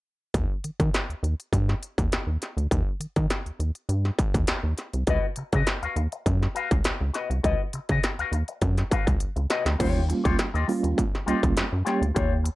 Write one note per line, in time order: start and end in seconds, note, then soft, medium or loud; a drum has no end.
0.34 0.46 D#2 loud
0.34 kick loud
0.34 closed hi-hat medium
0.64 0.71 D#3 medium
0.64 closed hi-hat medium
0.80 0.90 D#3 medium
0.80 kick medium
0.80 closed hi-hat soft
0.94 snare medium
0.94 closed hi-hat medium
1.09 1.15 D#2 soft
1.09 closed hi-hat soft
1.23 1.35 D#2 medium
1.23 closed hi-hat medium
1.40 closed hi-hat soft
1.53 1.75 G2 loud
1.53 kick medium
1.53 closed hi-hat medium
1.69 snare soft
1.83 closed hi-hat medium
1.98 2.08 D#2 medium
1.98 kick medium
1.98 closed hi-hat soft
2.12 2.18 D#2 soft
2.12 snare loud
2.12 closed hi-hat medium
2.27 2.37 D#2 medium
2.42 snare soft
2.42 closed hi-hat medium
2.57 2.67 D2 medium
2.57 closed hi-hat soft
2.71 2.83 D#2 loud
2.71 kick loud
2.71 closed hi-hat medium
3.00 3.07 D#3 soft
3.00 closed hi-hat medium
3.16 3.27 D#3 loud
3.16 kick medium
3.16 closed hi-hat soft
3.30 snare medium
3.30 closed hi-hat medium
3.46 3.51 D#2 soft
3.46 closed hi-hat soft
3.60 3.71 D#2 medium
3.60 closed hi-hat medium
3.75 closed hi-hat soft
3.89 4.11 G2 loud
3.89 closed hi-hat medium
4.05 snare soft
4.19 kick medium
4.19 closed hi-hat medium
4.34 4.45 D#2 medium
4.34 kick medium
4.34 closed hi-hat medium
4.47 4.55 D#2 soft
4.47 snare loud
4.47 closed hi-hat medium
4.63 4.74 D#2 medium
4.78 snare soft
4.78 closed hi-hat medium
4.93 5.04 C2 medium
4.93 closed hi-hat soft
5.07 5.19 C#2 loud
5.07 5.25 F#4 medium
5.07 5.25 B4 medium
5.07 5.26 D#5 medium
5.07 kick medium
5.07 closed hi-hat medium
5.36 5.44 C#3 soft
5.36 muted clean electric guitar stroke soft
5.36 closed hi-hat medium
5.53 5.63 C#3 loud
5.53 5.66 F#4 soft
5.53 5.66 B4 medium
5.53 5.65 D#5 medium
5.53 kick medium
5.53 closed hi-hat soft
5.67 muted clean electric guitar stroke soft
5.67 snare medium
5.67 closed hi-hat medium
5.82 5.88 D#2 soft
5.82 5.95 F#4 soft
5.82 5.96 B4 medium
5.82 5.98 F5 medium
5.82 closed hi-hat soft
5.96 6.08 D#2 medium
5.96 muted clean electric guitar stroke soft
5.96 closed hi-hat medium
6.12 muted clean electric guitar stroke medium
6.12 closed hi-hat soft
6.26 6.48 F#2 loud
6.26 muted clean electric guitar stroke soft
6.26 kick medium
6.26 closed hi-hat medium
6.43 snare soft
6.55 6.68 F#4 medium
6.55 6.69 B4 medium
6.55 6.69 F5 medium
6.55 closed hi-hat medium
6.71 6.81 C#2 medium
6.71 muted clean electric guitar stroke soft
6.71 kick medium
6.71 closed hi-hat soft
6.84 6.92 C#2 medium
6.84 snare loud
6.84 closed hi-hat medium
7.01 7.11 C#2 medium
7.01 muted clean electric guitar stroke soft
7.14 7.31 F#4 medium
7.14 7.31 B4 medium
7.14 7.29 D#5 medium
7.14 snare soft
7.14 closed hi-hat medium
7.30 7.40 C2 medium
7.30 muted clean electric guitar stroke soft
7.30 closed hi-hat soft
7.43 7.55 C#2 medium
7.43 7.61 F#4 medium
7.43 7.61 B4 medium
7.43 7.62 D#5 medium
7.43 kick medium
7.43 closed hi-hat medium
7.73 7.80 C#3 medium
7.73 muted clean electric guitar stroke soft
7.73 closed hi-hat medium
7.89 8.00 C#3 loud
7.89 8.02 F#4 soft
7.89 8.02 B4 medium
7.89 8.01 D#5 medium
7.89 kick medium
7.89 closed hi-hat medium
8.03 muted clean electric guitar stroke soft
8.03 snare medium
8.03 closed hi-hat medium
8.19 8.24 D#2 soft
8.19 8.32 F#4 medium
8.19 8.33 B4 medium
8.19 8.34 F5 medium
8.19 closed hi-hat soft
8.32 8.43 D#2 medium
8.32 muted clean electric guitar stroke soft
8.32 closed hi-hat medium
8.48 muted clean electric guitar stroke soft
8.48 closed hi-hat soft
8.61 8.83 F#2 loud
8.61 muted clean electric guitar stroke soft
8.61 kick medium
8.61 closed hi-hat medium
8.77 snare soft
8.77 closed hi-hat soft
8.91 9.04 F#4 medium
8.91 9.05 B4 medium
8.91 9.06 F5 medium
8.91 kick medium
8.91 closed hi-hat medium
9.07 9.17 C#2 medium
9.07 muted clean electric guitar stroke soft
9.07 kick medium
9.07 closed hi-hat medium
9.20 9.27 C#2 soft
9.20 closed hi-hat medium
9.36 9.47 C#2 medium
9.36 muted clean electric guitar stroke soft
9.36 closed hi-hat soft
9.50 9.67 F#4 medium
9.50 9.66 B4 medium
9.50 9.64 D#5 medium
9.50 snare medium
9.50 closed hi-hat medium
9.65 9.76 D2 medium
9.65 muted clean electric guitar stroke soft
9.65 snare medium
9.65 closed hi-hat soft
9.79 10.13 D#2 loud
9.79 9.98 G3 medium
9.79 9.98 A#3 medium
9.79 9.98 C#4 medium
9.79 10.00 F4 medium
9.79 9.98 F4 loud
9.79 10.01 G4 medium
9.79 10.01 C#5 medium
9.79 kick loud
9.79 closed hi-hat medium
9.79 crash loud
10.09 10.45 G3 medium
10.09 10.45 A#3 medium
10.09 10.45 C#4 medium
10.09 10.45 F4 medium
10.09 muted clean electric guitar stroke soft
10.09 closed hi-hat medium
10.24 10.35 C#2 loud
10.24 10.36 F4 soft
10.24 10.37 G4 medium
10.24 10.36 C#5 medium
10.24 kick medium
10.24 closed hi-hat medium
10.39 muted clean electric guitar stroke soft
10.39 snare medium
10.39 closed hi-hat medium
10.54 10.65 D#2 loud
10.54 10.66 F4 medium
10.54 10.67 G4 medium
10.54 10.69 D#5 medium
10.54 closed hi-hat soft
10.68 11.03 G3 medium
10.68 11.04 A#3 medium
10.68 11.04 C#4 medium
10.68 11.04 F4 loud
10.68 muted clean electric guitar stroke soft
10.68 open hi-hat medium
10.83 10.94 D#2 medium
10.83 muted clean electric guitar stroke soft
10.83 closed hi-hat medium
10.97 muted clean electric guitar stroke soft
10.97 kick medium
10.97 closed hi-hat medium
11.15 snare soft
11.26 11.34 C#2 medium
11.26 11.62 G3 medium
11.26 11.63 A#3 medium
11.26 11.63 C#4 medium
11.26 11.40 F4 medium
11.26 11.63 F4 medium
11.26 11.41 G4 medium
11.26 11.41 D#5 medium
11.26 closed hi-hat medium
11.43 11.53 C#2 loud
11.43 kick loud
11.43 closed hi-hat soft
11.57 11.63 F#2 soft
11.57 snare loud
11.57 closed hi-hat medium
11.72 11.83 F#2 medium
11.72 muted clean electric guitar stroke soft
11.85 12.04 G3 medium
11.85 12.05 A#3 medium
11.85 12.05 C#4 medium
11.85 12.03 F4 medium
11.85 12.01 G4 medium
11.85 12.05 G4 medium
11.85 11.99 C#5 medium
11.85 snare soft
11.85 closed hi-hat medium
12.01 12.12 D2 medium
12.01 muted clean electric guitar stroke soft
12.01 closed hi-hat medium
12.15 12.49 D#2 loud
12.15 12.33 F4 medium
12.15 12.33 G4 medium
12.15 12.33 C#5 medium
12.15 kick loud
12.15 closed hi-hat medium
12.44 muted clean electric guitar stroke soft
12.44 closed hi-hat medium